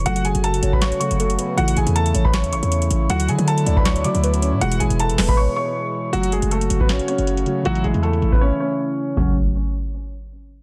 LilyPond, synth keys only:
\new Staff \with { instrumentName = "Synth keys" } { \time 4/4 \key fis \minor \tempo 4 = 158 <cis fis a fis' a'>2~ <cis fis a fis' a'>8 <cis fis a fis' a'>4. | <cis e a e' a'>1 | <d fis a e' a'>2~ <d fis a e' a'>8 <d fis a e' fis'>4. | <b, e gis e' gis'>1 |
<cis fis a fis'>2.~ <cis fis a fis'>8 <cis fis a fis'>8 | <cis e a>1 | <cis fis a fis'>8 r2. r8 | }